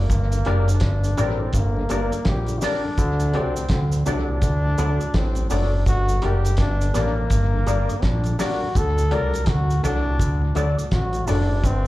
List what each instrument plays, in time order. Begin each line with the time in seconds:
Already playing: trombone A#3
0.10 analog synth bass G1, kick, closed hi-hat, cabasa
0.32 tonewheel organ G2 D3, closed hi-hat, cabasa
0.45 analog synth bass F#1, tonewheel organ G3 A#3 D4, grand piano D4 G4 A#4 D5, clean electric guitar G4 A#4 D5, closed hi-hat
0.68 tonewheel organ G2 D3, trombone D4, closed hi-hat, cabasa
0.80 analog synth bass G1, kick, snare, closed hi-hat
1.04 tonewheel organ G2 D3, closed hi-hat, cabasa
1.17 analog synth bass A1, tonewheel organ G3 A#3 D4, grand piano D4 G4 A#4 D5, clean electric guitar G4 A#4 D5, closed hi-hat, cabasa
1.21 trombone C4
1.40 tonewheel organ G2 D3, grand piano A#4 D5, muted clean electric guitar stroke
1.53 analog synth bass G1, trombone A#3, kick, closed hi-hat, cabasa
1.77 tonewheel organ G2 D3
1.89 analog synth bass G1, tonewheel organ G3 A#3 D4, grand piano D4 G4 A#4 D5, clean electric guitar G4 A#4 D5, closed hi-hat, cabasa
2.12 tonewheel organ G2 D3, muted clean electric guitar stroke, closed hi-hat, cabasa
2.25 analog synth bass A#1, kick, snare, closed hi-hat
2.29 trombone G4
2.46 tonewheel organ G2 D3, closed hi-hat, cabasa
2.59 tonewheel organ G3 A#3 D4, grand piano D4 G4 A#4, trombone D#4, clean electric guitar G4, snare, open hi-hat, cabasa
2.63 trombone D4, clean electric guitar A#4 D5, grand piano D5
2.84 tonewheel organ G2 D3
2.98 analog synth bass D2, kick, closed hi-hat, cabasa
3.20 tonewheel organ D2 A2, closed hi-hat, cabasa
3.33 analog synth bass C2, tonewheel organ F#3 A3 D4, trombone C4, grand piano D4 F#4 A4 D5, clean electric guitar F#4 A4 D5, closed hi-hat
3.56 tonewheel organ D2 A2, closed hi-hat, cabasa
3.69 analog synth bass D2, kick, snare, closed hi-hat
3.92 tonewheel organ D2 A2, closed hi-hat, cabasa
4.06 analog synth bass C2, tonewheel organ F#3 A3 D4, grand piano D4 F#4 A4 D5, trombone D4, clean electric guitar F#4 A4 D5, closed hi-hat, cabasa
4.29 tonewheel organ D2 A2, grand piano A4 D5, muted clean electric guitar stroke
4.42 analog synth bass D2, kick, closed hi-hat, cabasa
4.65 tonewheel organ D2 A2
4.78 analog synth bass D2, tonewheel organ F#3 A3 D4, grand piano D4 F#4 A4 D5, clean electric guitar F#4 A4 D5, closed hi-hat, cabasa
5.00 tonewheel organ D2 A2, muted clean electric guitar stroke, closed hi-hat, cabasa
5.14 analog synth bass A1, trombone C4, kick, snare, closed hi-hat
5.35 tonewheel organ D2 A2, closed hi-hat, cabasa
5.50 analog synth bass F#1, tonewheel organ F#3 A3 D4, grand piano D4 F#4 A4 D5, trombone D4, clean electric guitar F#4 A4 D5, open hi-hat, cabasa
5.73 tonewheel organ D2 A2
5.86 analog synth bass G1, trombone F#4, kick, closed hi-hat, cabasa
6.09 tonewheel organ G2 D3, closed hi-hat, cabasa
6.22 analog synth bass F#1, tonewheel organ G3 A#3 D4, grand piano D4 G4 A#4 D5, clean electric guitar G4 A#4 D5, trombone G4, closed hi-hat
6.45 tonewheel organ G2 D3, closed hi-hat, cabasa
6.57 analog synth bass G1, trombone D4, kick, snare, closed hi-hat
6.81 tonewheel organ G2 D3, closed hi-hat, cabasa
6.94 analog synth bass A1, tonewheel organ G3 A#3 D4, trombone A#3, grand piano D4 G4 A#4 D5, clean electric guitar G4 A#4 D5, snare, closed hi-hat, cabasa
7.17 tonewheel organ G2 D3, grand piano A#4 D5, muted clean electric guitar stroke
7.30 analog synth bass G1, kick, closed hi-hat, cabasa
7.54 tonewheel organ G2 D3
7.67 analog synth bass G1, tonewheel organ G3 A#3 D4, grand piano D4 G4 A#4 D5, clean electric guitar G4 A#4 D5, closed hi-hat, cabasa
7.89 tonewheel organ G2 D3, muted clean electric guitar stroke, closed hi-hat, cabasa
8.02 analog synth bass A#1, trombone D4, kick, snare, closed hi-hat
8.24 tonewheel organ G2 D3, closed hi-hat, cabasa
8.39 tonewheel organ G3 A#3 D4, grand piano D4 G4 A#4 D5, trombone F#4, clean electric guitar G4 A#4 D5, snare, open hi-hat, cabasa
8.62 tonewheel organ G2 D3
8.75 analog synth bass D2, trombone A4, kick, closed hi-hat, cabasa
8.98 tonewheel organ D2 A2, closed hi-hat, cabasa
9.11 analog synth bass C2, tonewheel organ F#3 A3 D4, grand piano D4 F#4 A4 D5, clean electric guitar F#4 A4 D5, trombone A#4, closed hi-hat
9.34 tonewheel organ D2 A2, closed hi-hat, cabasa
9.46 analog synth bass D2, trombone F#4, kick, snare, closed hi-hat
9.70 tonewheel organ D2 A2, closed hi-hat, cabasa
9.83 analog synth bass C2, tonewheel organ F#3 A3 D4, grand piano D4 F#4 A4 D5, trombone D4, clean electric guitar F#4 A4 D5, closed hi-hat, cabasa
10.06 tonewheel organ D2 A2, grand piano A4 D5, muted clean electric guitar stroke
10.20 analog synth bass D2, kick, closed hi-hat, cabasa
10.42 tonewheel organ D2 A2
10.55 analog synth bass D2, tonewheel organ F#3 A3 D4, grand piano D4 F#4 A4 D5, clean electric guitar F#4 A4 D5, closed hi-hat, cabasa
10.78 tonewheel organ D2 A2, muted clean electric guitar stroke, closed hi-hat, cabasa
10.91 analog synth bass A1, trombone F#4, kick, snare, closed hi-hat
11.13 tonewheel organ D2 A2, closed hi-hat, cabasa
11.27 analog synth bass F#1, tonewheel organ F#3 A3 D4, grand piano D4 F#4 A4 D5, trombone D4, clean electric guitar F#4 A4 D5, open hi-hat, cabasa
11.49 tonewheel organ D2 A2
11.64 analog synth bass G1, trombone C4, kick, closed hi-hat, cabasa